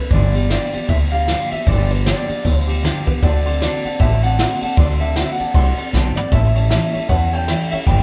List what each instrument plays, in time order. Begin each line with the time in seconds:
Already playing: steel-string acoustic guitar D4 A4, clean electric guitar B4
0.00 steel-string acoustic guitar C4
0.10 upright bass G1, steel-string acoustic guitar G2 D3 F3 B3 D4 G4, clean electric guitar D5, kick, ride
0.34 steel-string acoustic guitar F3 B3 D4 G4, ride
0.50 steel-string acoustic guitar G2 D3 F3 B3 D4 G4, clean electric guitar D5, snare, ride
0.73 steel-string acoustic guitar F3 B3 D4 G4, muted upright bass stroke, ride
0.89 upright bass D2, steel-string acoustic guitar F3 B3 D4 G4, clean electric guitar E5, kick, ride
1.12 steel-string acoustic guitar F3 B3 D4 G4, clean electric guitar F5, ride
1.28 steel-string acoustic guitar G2 D3 F3 B3 D4 G4, snare, ride
1.51 steel-string acoustic guitar F3 B3 D4 G4, clean electric guitar E5, muted upright bass stroke, ride
1.66 upright bass G1, steel-string acoustic guitar G2 D3 F3 B3 D4 G4, clean electric guitar D5, kick, ride
1.90 steel-string acoustic guitar F3 B3 D4 G4, clean electric guitar B4, ride
2.05 steel-string acoustic guitar G2 D3 F3 B3 D4 G4, clean electric guitar D5, snare, ride
2.28 steel-string acoustic guitar F3 B3 D4 G4, muted upright bass stroke, ride
2.44 upright bass D2, steel-string acoustic guitar F3 B3 D4 G4, kick, ride
2.59 clean electric guitar C5
2.67 steel-string acoustic guitar F3 B3 D4 G4, ride
2.83 steel-string acoustic guitar G2 D3 F3 B3 D4 G4, snare, ride
3.05 steel-string acoustic guitar F3 B3 D4 G4, clean electric guitar B4, muted upright bass stroke, kick, ride
3.22 upright bass D2, steel-string acoustic guitar D3 F#3 C4 D4 A4, honky-tonk piano D5 F#5 A5, clean electric guitar D5, kick, ride
3.44 steel-string acoustic guitar C4 D4 A4, honky-tonk piano D5 F#5 C6, ride
3.60 steel-string acoustic guitar D3 F#3 C4 D4 A4, honky-tonk piano D5 F#5 A5, clean electric guitar D5, snare, ride
3.83 steel-string acoustic guitar C4 D4 A4, honky-tonk piano D5 F#5 A5, muted upright bass stroke, ride
3.99 upright bass A1, steel-string acoustic guitar F#3 C4 D4 A4, honky-tonk piano D5 F#5 A5, clean electric guitar E5, kick, ride
4.22 steel-string acoustic guitar C4 D4 A4, honky-tonk piano D5 F#5 A5, clean electric guitar F#5, ride
4.38 steel-string acoustic guitar D3 F#3 C4 D4 A4, honky-tonk piano D5 F#5 C6, clean electric guitar F#5, snare, ride
4.61 steel-string acoustic guitar D4 A4, honky-tonk piano D5 F#5 A5, clean electric guitar F#5, muted upright bass stroke, ride
4.66 steel-string acoustic guitar C4
4.77 upright bass D2, steel-string acoustic guitar D3 F#3 C4 D4 A4, clean electric guitar D5, honky-tonk piano D5 F#5 C6, kick, ride
5.00 steel-string acoustic guitar C4 D4 A4, honky-tonk piano D5 F#5 A5, clean electric guitar E5, ride
5.16 steel-string acoustic guitar D3 F#3 C4 D4 A4, honky-tonk piano D5 F#5 B5, clean electric guitar F#5, snare, ride
5.24 clean electric guitar E5
5.32 clean electric guitar F#5
5.39 steel-string acoustic guitar C4 D4 A4, honky-tonk piano D5 F#5 A5, muted upright bass stroke, ride
5.54 upright bass C2, steel-string acoustic guitar F#3 C4 D4 A4, honky-tonk piano D5 F#5 C6, kick, ride
5.78 steel-string acoustic guitar C4 D4 A4, honky-tonk piano D5 F#5 C6, muted upright bass stroke, ride
5.93 upright bass B1, steel-string acoustic guitar D3 F#3 C4 D4 A4, honky-tonk piano D5 F#5 A5, snare
6.16 steel-string acoustic guitar D4 A4, clean electric guitar D5, honky-tonk piano D5 F#5 B5, muted upright bass stroke, floor tom
6.21 steel-string acoustic guitar C4
6.32 upright bass A1, steel-string acoustic guitar A2 E3 G3 C#4 E4 A4, honky-tonk piano C#5 E5 A5, clean electric guitar E5, kick, ride
6.56 steel-string acoustic guitar G3 C#4 E4 A4, honky-tonk piano C#5 E5 A5, ride
6.70 steel-string acoustic guitar A2 E3 G3 C#4 E4, honky-tonk piano C#5 E5 A5, clean electric guitar E5, snare, ride
6.74 steel-string acoustic guitar A4
6.93 steel-string acoustic guitar G3 C#4 E4 A4, honky-tonk piano C#5 E5 A5, muted upright bass stroke, ride
7.09 upright bass E2, steel-string acoustic guitar G3 C#4 E4, honky-tonk piano C#5 E5 A5, clean electric guitar F#5, kick, ride
7.13 steel-string acoustic guitar A4
7.32 steel-string acoustic guitar G3 C#4 E4 A4, honky-tonk piano C#5 E5 A5, clean electric guitar G5, ride
7.48 steel-string acoustic guitar A2 E3 G3 C#4 E4 A4, honky-tonk piano C#5 E5 B5, snare, ride
7.71 steel-string acoustic guitar G3 C#4 E4 A4, honky-tonk piano C#5 E5 G5, clean electric guitar E5, muted upright bass stroke, ride
7.87 upright bass G1, steel-string acoustic guitar G2 D3 F3 B3 D4 G4, honky-tonk piano D5 G5 B5, clean electric guitar G5, kick, ride